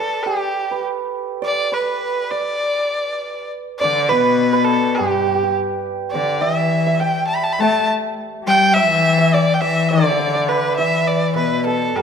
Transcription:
Already playing: A4 B4 D5
0.00 A4
0.23 G4
0.71 B4
1.42 D5
1.72 B4
2.31 D5
3.79 D3 D5
4.09 B2 B4
4.53 B4
4.65 A4
4.95 G4
5.00 G2
5.04 G4
5.11 G4
5.19 G4
5.27 G4
5.35 G4
5.43 G4
6.11 D3 D5
6.40 E3 E5
6.87 E5
7.00 G5
7.27 A5
7.35 B5
7.43 A5
7.53 B5
7.59 A3 A5
8.44 G3 G5
8.48 G5
8.73 E3 E5
9.18 E5
9.34 D5
9.54 G5
9.61 E3 E5
9.89 D3 D5
9.98 D5
10.04 D5
10.12 D5
10.19 D5
10.27 D5
10.35 D5
10.48 B4
10.77 E3 E5
11.07 D5
11.35 B2 B4
11.66 A4
11.96 G2 G4

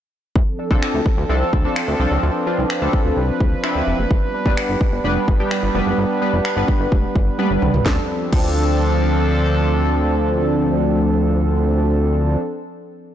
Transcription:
0.36 D2 F3 C4 D4 A4, kick
0.59 D4 A4
0.70 C2 F3 C4 D4 A4, kick
0.83 finger snap
0.94 D2
1.06 kick
1.18 D2
1.29 C2 F3 C4 D4 A4
1.53 D2, kick
1.64 F3 C4 D4 A4
1.76 finger snap
1.88 D2
2.00 C2 F3 C4 D4 A4
2.11 C#2
2.23 D2 B4
2.46 F3 C4 D4 F4
2.58 C2
2.70 finger snap
2.82 D2 F3 C4 D4 A4
2.93 kick
3.05 D2
3.17 C2
3.41 D2, kick
3.64 F3 C4 D4 E4, finger snap
3.75 D2
3.87 F1
3.99 F#1
4.10 G1 G3 B3 D4, kick
4.34 D4 B4
4.46 F1 G3 B3 D4 B4, kick
4.57 finger snap
4.69 G1
4.81 kick
4.92 G1
5.04 F1 G3 B3 D4 B4
5.28 G1, kick
5.39 G3 B3 D4 G4
5.51 finger snap
5.63 G1
5.75 F1 G3 B3 D4 B4
5.86 F#1
5.98 G1
6.21 G3 B3 D4 B4
6.33 F1
6.45 finger snap
6.56 G1 G3 B3 D4 B4
6.68 kick
6.80 G1
6.92 F1, kick
7.16 G1, kick
7.38 G3 B3 D4 B4, high tom
7.51 G1
7.62 C2, mid tom
7.74 C#2, floor tom
7.86 D2 F3 C4 D4 A4, kick, snare
8.32 D2 F3 C4 D4 A4, kick, crash

